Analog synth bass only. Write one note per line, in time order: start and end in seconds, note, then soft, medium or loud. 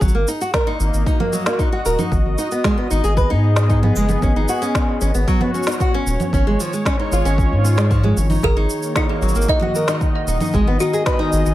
0.01 0.12 G#1 loud
0.15 0.25 G#1 medium
0.80 0.90 G#1 medium
0.94 1.04 G#1 medium
1.86 1.96 D#1 medium
2.12 2.22 G#1 loud
2.26 2.36 G#1 loud
2.91 3.01 G#1 medium
3.04 3.32 G#1 medium
3.31 3.92 G#2 loud
3.96 4.17 F#1 medium
4.23 4.33 G#1 loud
4.36 4.46 G#1 medium
5.02 5.12 G#1 medium
5.15 5.25 G#1 loud
6.07 6.17 D#1 loud
6.33 6.43 G#1 loud
6.46 6.57 G#1 medium
7.12 7.22 G#1 medium
7.25 7.53 G#1 medium
7.51 8.13 G#2 loud
8.17 8.38 G#1 loud
8.43 8.54 G#1 loud
8.56 8.67 G#1 loud
9.22 9.32 G#1 medium
9.35 9.46 G#1 medium
10.27 10.38 D#1 loud
10.54 10.64 G#1 loud
10.67 10.77 G#1 loud
11.33 11.43 G#1 medium
11.46 11.54 G#1 medium